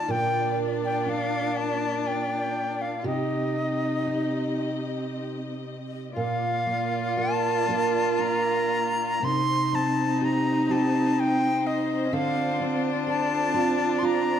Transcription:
0.00 0.66 D3 medium
0.00 0.11 D#4 medium
0.00 1.06 F4 soft
0.00 3.01 F4 medium
0.00 3.01 D5 medium
0.00 0.12 A5 medium
0.08 3.04 A#2 medium
0.08 3.02 A#3 medium
0.08 2.98 D4 loud
0.08 3.04 A#4 medium
0.08 0.59 G5 loud
0.85 1.00 G5 medium
1.00 1.11 G5 medium
1.06 3.14 D4 medium
1.06 1.58 F5 medium
1.57 2.08 A5 medium
2.07 2.83 G5 medium
2.82 3.05 F5 medium
2.99 3.06 F4 soft
3.04 6.14 C3 medium
3.04 6.12 C4 medium
3.04 5.63 D#4 medium
3.04 6.15 G4 medium
3.04 6.12 G4 medium
3.04 6.12 D#5 medium
3.04 5.07 D#5 medium
4.06 6.25 D#4 soft
6.13 9.22 A#2 medium
6.13 9.19 A#3 medium
6.13 9.17 F4 loud
6.13 9.19 F4 medium
6.13 9.19 D5 medium
6.13 7.19 F5 loud
6.67 7.67 A#3 medium
7.17 7.68 A#4 medium
7.17 8.22 A5 loud
7.68 9.33 A#3 medium
7.68 8.19 D4 medium
7.68 9.33 A#4 medium
8.19 9.76 D4 medium
8.19 9.26 A#5 loud
9.22 12.13 C3 medium
9.22 14.40 C4 medium
9.22 12.10 D#4 medium
9.22 12.07 D#4 loud
9.22 14.40 C5 medium
9.22 9.76 C6 loud
9.73 10.69 C4 medium
9.73 10.26 A5 loud
10.21 10.69 G4 medium
10.21 10.73 A#5 loud
10.69 12.60 C4 medium
10.69 12.22 G4 medium
10.69 11.21 A5 medium
11.20 11.68 G5 loud
11.67 12.15 D#5 medium
12.06 12.14 C#4 medium
12.12 14.40 D3 medium
12.12 14.40 D4 loud
12.12 14.40 F4 medium
12.12 12.83 F5 medium
12.60 13.54 C4 medium
13.07 13.54 A4 medium
13.07 14.00 A5 loud
13.54 14.40 C4 medium
13.54 14.02 F4 medium
13.99 14.40 F4 medium
13.99 14.07 C6 medium
14.05 14.40 A#5 loud

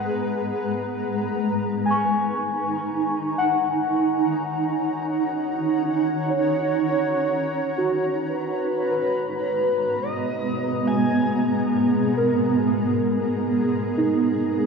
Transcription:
0.00 1.41 G#3 medium
0.00 3.57 G#4 medium
0.00 1.41 B4 medium
0.00 0.59 F#5 soft
0.00 14.66 A#5 medium
1.41 10.03 D#4 medium
1.85 3.16 G#5 medium
1.90 3.18 C#6 soft
3.05 11.01 C#5 medium
3.31 10.16 F#5 medium
3.38 4.68 F#5 medium
6.30 7.60 C#5 soft
7.78 8.65 F#4 soft
8.26 14.66 G#3 medium
8.26 10.03 B4 medium
8.85 14.66 B3 medium
8.91 10.22 B4 soft
9.24 14.66 G#4 medium
10.02 10.89 D#5 loud
10.87 11.50 G#5 medium
12.17 13.47 A#4 soft
13.97 14.66 D#4 medium

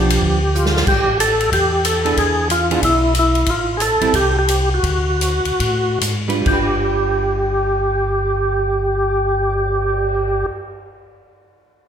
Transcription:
0.00 0.18 B1 medium
0.00 0.38 F3 medium
0.00 0.38 B3 medium
0.00 0.38 D4 medium
0.00 0.72 G4 medium
0.10 ride medium
0.22 0.84 D2 medium
0.22 kick soft
0.55 0.85 F4 medium
0.55 hi-hat pedal medium
0.65 snare medium
0.76 snare medium
0.87 1.49 A1 medium
0.87 1.18 G4 medium
0.87 kick medium
0.87 crash medium
1.20 1.50 A4 medium
1.20 hi-hat pedal soft
1.20 ride medium
1.41 ride soft
1.52 2.14 E2 medium
1.52 1.86 G4 loud
1.52 kick soft
1.52 ride medium
1.85 2.18 A4 medium
1.85 hi-hat pedal medium
1.85 ride medium
2.05 2.47 E3 soft
2.05 2.47 B3 soft
2.05 2.47 D4 medium
2.05 2.47 G#4 medium
2.05 ride soft
2.17 2.79 E2 medium
2.17 2.48 G#4 medium
2.17 kick soft
2.17 ride medium
2.50 2.81 F4 medium
2.50 hi-hat pedal soft
2.50 ride medium
2.71 2.81 E3 medium
2.71 2.81 B3 medium
2.71 2.82 D4 medium
2.71 2.81 G#4 medium
2.71 ride soft
2.82 3.44 B1 medium
2.82 3.14 E4 medium
2.82 kick soft
2.82 ride medium
3.15 hi-hat pedal soft
3.15 ride medium
3.19 3.50 E4 medium
3.35 ride soft
3.46 3.97 A1 medium
3.46 3.77 F4 medium
3.46 kick soft
3.46 ride medium
3.77 3.81 G#4 medium
3.77 hi-hat pedal medium
3.77 ride soft
3.82 4.15 A4 medium
4.01 4.07 A1 soft
4.01 4.12 G3 medium
4.01 4.12 C4 medium
4.01 4.12 E4 medium
4.01 ride soft
4.13 4.80 C2 medium
4.13 4.37 G4 medium
4.13 kick soft
4.13 ride medium
4.39 4.69 G4 medium
4.48 hi-hat pedal medium
4.48 ride medium
4.74 5.99 F#4 medium
4.83 5.41 D2 medium
4.83 kick soft
4.83 ride medium
5.21 hi-hat pedal medium
5.21 ride soft
5.45 5.52 D2 soft
5.45 ride soft
5.60 5.98 A2 medium
5.60 kick soft
5.60 ride medium
6.01 6.42 G#2 medium
6.01 hi-hat pedal medium
6.01 ride medium
6.28 6.40 G3 medium
6.28 6.44 D4 medium
6.28 6.44 F4 medium
6.28 6.44 B4 medium
6.28 ride soft
6.41 10.44 G3 medium
6.46 10.44 G1 medium
6.46 10.49 D4 medium
6.46 10.46 G4 medium
6.46 kick soft
6.46 crash medium
6.50 10.53 F4 medium
6.50 10.56 B4 medium
6.76 cymbal swell soft

